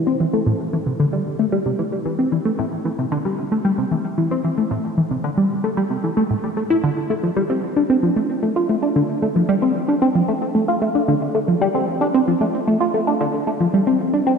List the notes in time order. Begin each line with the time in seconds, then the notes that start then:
0.07 C4
0.20 E3
0.33 A3
0.46 A2
0.73 E3
0.86 C3
1.00 D3
1.13 G3
1.39 A3
1.52 G3
1.66 C3
1.79 E3
2.06 E3
2.19 C4
2.32 E3
2.45 A3
2.59 A2
2.85 E3
2.99 C3
3.12 D3
3.25 G3
3.52 A3
3.65 G3
3.78 C3
3.91 E3
4.18 E3
4.31 C4
4.44 E3
4.58 A3
4.71 A2
4.98 E3
5.11 C3
5.24 D3
5.37 G3
5.64 A3
5.77 G3
5.90 C3
6.04 E3
6.17 A3
6.30 A2
6.44 G3
6.57 A3
6.70 E4
6.84 D3
7.10 A3
7.23 F3
7.36 G3
7.50 C4
7.76 D4
7.90 C4
8.03 F3
8.16 A3
8.43 A3
8.56 F4
8.69 A3
8.83 D4
8.96 D3
9.22 A3
9.36 F3
9.49 G3
9.62 C4
9.88 D4
10.02 C4
10.15 F3
10.28 A3
10.55 A3
10.68 F4
10.82 A3
10.95 D4
11.08 D3
11.35 A3
11.48 F3
11.61 G3
11.75 C4
12.01 D4
12.14 C4
12.28 F3
12.41 A3
12.68 A3
12.80 F4
12.94 A3
13.07 D4
13.21 D3
13.47 A3
13.60 F3
13.74 G3
13.87 C4
14.14 D4
14.27 C4